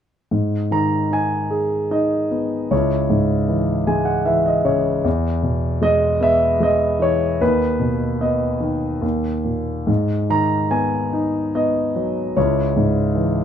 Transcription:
0.31 G#2
0.71 D#3 A#5
1.11 D#4 G#5
1.51 G#4
1.91 D#4 D#5
2.31 B3
2.71 C#2 E4 C#5
3.10 G#2
3.48 E3
3.87 G#3 G#5
4.05 F#5
4.26 E3 E5
4.46 D#5
4.65 C#3 C#5
5.04 E2
5.43 B2
5.81 G#3 D#5
6.21 B3 E5
6.60 G#3 D#5
7.00 E3 C#5
7.41 D#2 D#4 B4
7.80 B2
8.21 B3 D#5
8.60 D#3
9.02 D#2
9.44 A#2
9.87 G#2
10.30 D#3 A#5
10.71 B3 G#5
11.13 D#4
11.55 B3 D#5
11.96 F#3
12.37 C#2 E4 C#5
12.76 G#2
13.15 E3

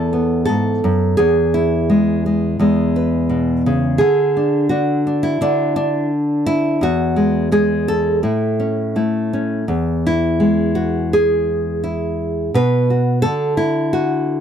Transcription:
Already playing: E2 E3 B3 A4
0.13 B3
0.45 G#2 A4
0.84 F#2
1.17 E2 G#4
1.54 E4
1.90 G#3
2.26 G#3
2.59 E2 G#3
2.96 B4
3.30 B2
3.66 C#3
3.98 D3 G#4
4.37 D4
4.69 D4 F#4
5.07 D4
5.23 E4
5.41 D3 D4
5.76 D4
6.46 E4
6.81 E2 F#4
7.16 G#3
7.52 G#3 G#4
7.88 A4
8.23 A2 E4
8.60 C#4
8.96 A3 E4
9.33 C#4
9.68 E2
10.06 E4
10.40 G#3
10.75 F#4
11.13 G#4
11.84 E4
12.54 B2 B4
12.90 F#4
13.22 D3 A4
13.57 E4
13.93 F#4

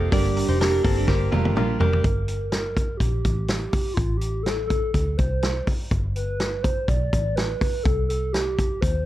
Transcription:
Already playing: F3 A#3 C4 F4 G4 A4 C5 D#5
0.11 G1 G2 D3 G3 A#3 D4 G4 A#4 D5, kick, hi-hat pedal, open hi-hat
0.35 A#3 D4 G4 A#4, hi-hat pedal, open hi-hat
0.47 F1 G3 A#3 D4 D#4 G4 C5
0.59 A#3 D4 G4 A4 A#4, snare, hi-hat pedal, open hi-hat
0.83 G1 A#3 C4 D4 G4 A4 A#4, kick, hi-hat pedal, open hi-hat
0.96 G3 A#3 D4 G4
1.07 G1 A#3 D4 G4 A#4 C5, kick, snare
1.31 F1 G3 A3 A#3 D4 F4 G4 A#4, high tom
1.45 high tom
1.55 A#1 G3 A#3 D4 F4 G4 A#4, mid tom
1.78 F1 G3 A#3 D4 G4 A#4, floor tom
1.93 floor tom
2.04 G1, kick, closed hi-hat
2.28 closed hi-hat
2.49 A#4, snare, closed hi-hat
2.77 kick, closed hi-hat
2.97 A#1 G4, kick, closed hi-hat
3.25 A1, kick, closed hi-hat
3.48 snare, closed hi-hat
3.69 G4, open hi-hat
3.73 kick
3.94 A1 F4, kick, closed hi-hat
4.17 G4, closed hi-hat
4.43 A4, snare, closed hi-hat
4.67 A4, kick, closed hi-hat
4.92 D2 A4, kick, closed hi-hat
5.17 C2 C5, kick, closed hi-hat
5.42 snare, closed hi-hat
5.67 kick, open hi-hat
5.91 G1, kick, closed hi-hat
6.15 B4, closed hi-hat
6.40 snare, closed hi-hat
6.63 C5, kick, closed hi-hat
6.88 B1 D5, kick, closed hi-hat
7.13 A1, kick, closed hi-hat
7.36 B4, snare, closed hi-hat
7.61 kick, open hi-hat
7.83 C2 A4, kick, closed hi-hat
8.09 A4, closed hi-hat
8.33 G4, snare, closed hi-hat
8.59 kick, closed hi-hat
8.81 D#2 C5, kick, closed hi-hat

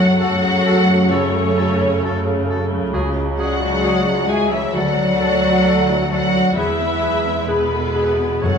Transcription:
Already playing: F#2 C#3 F#3 A3 F#4 C#5 F#5
0.20 F#3 F#4 A4 C#5 F#5
0.43 G#4
0.66 F#4 A4
0.89 A3
1.11 C#3 C#4 F#4 A4 C#5
1.35 A3
1.57 F#4 A4 C#5
1.80 A3
2.03 F#4 A4
2.25 G#4
2.46 F#4 A4
2.71 A3
2.93 C#2 G#3 F#4 G#4
3.16 G#3
3.37 F#3 F#4 G#4 D5 F#5
3.61 G#3
3.84 F#4 G#4
4.06 F#4
4.27 G#3 F#4 G#4 E5 G#5
4.32 G#4
4.51 E3 G#3 E4 C#5 E5
4.74 D2 F#3 A3 F#4 A4 D5 F#5
4.97 F#3
5.20 F#4 A4
5.43 F#3
5.66 F#4 A4
5.89 E4
6.10 F#3 F#4 A4 D5 F#5
6.35 F#3
6.53 E2 E3 G#3 E4 B4 E5
6.58 E2 G#4 B4
6.80 B3
7.02 G#4 B4
7.27 B3
7.46 B2 B3 G#4 B4
7.50 B4
7.73 A4
7.94 G#4 B4
8.19 B3
8.42 F#2 F#3 A3 C#4 F#4 A4 C#5
8.46 C#5 F#5

